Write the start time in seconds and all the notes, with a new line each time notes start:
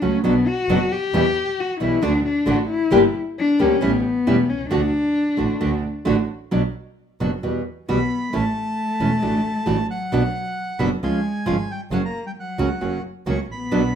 0.01 C#2 C#3 F#3 A3 C#4 F#4
0.23 B1 B2 F#3 B3 D4 F#4
0.47 F#4
0.68 F#1 B2 F#3 B3 D4 F#4
0.92 G4
1.13 E2 B2 E3 G3 B3 E4 G4
1.60 F#4
1.80 B1 B2 E3 G3 B3 E4 G4
2.02 D2 D3 A3 D4 F#4
2.25 D4
2.46 A1 D3 A3 D4 F#4
2.70 E4
2.91 G1 D3 G3 A#3 D4 G4
3.39 D4
3.59 D2 D3 G3 A#3 C#4 D4 G4
3.81 A1 E3 G3 A3 B3 C#4 E4 G4
4.26 E1 E3 G3 A3 C#4 E4 G4
4.50 C2 C#4
4.70 D2 D3 A3 D4 F#4
5.37 A1 D3 A3 D4 F#4
5.61 D2 D3 A3 D4 F#4
6.05 A1 D3 A3 D4 F#4
6.51 B1 B2 F#3 B3 D4 F#4
7.20 F#1 B2 F#3 B3 D4 F#4
7.43 E2 B2 E3 G3 B3 F#4
7.88 B1 B2 E3 G3 B3 F#4 B5
8.33 A1 E3 A3 C#4 E4 A5
9.00 E1 E3 A3 C#4 E4
9.22 A1 E3 A3 D4 F#4
9.66 A1 E3 A3 D4 F#4
9.90 F#3 F#5
10.12 B1 B2 F#3 B3 D4 F#4
10.79 F#1 B2 F#3 B3 D4 F#4 B5
11.02 C#2 C#3 F3 G#3 C#4 F4 G#5
11.46 G#1 C#3 F3 G#3 C#4 F4
11.71 G3 G5
11.91 F#1 C#3 F#3 A#3 C#4 F#4 F#5
12.04 A#3 A#5
12.27 G3 G5
12.37 F#3 F#5
12.58 C#2 C#3 F#3 A#3 C#4 F#4
12.81 F#1 C#3 F#3 A#3 C#4 F#4
13.26 C#2 C#3 F#3 A#3 C#4 F#4
13.31 C#6
13.50 A1 B3 B5
13.71 B1 B2 F#3 B3 D4 F#4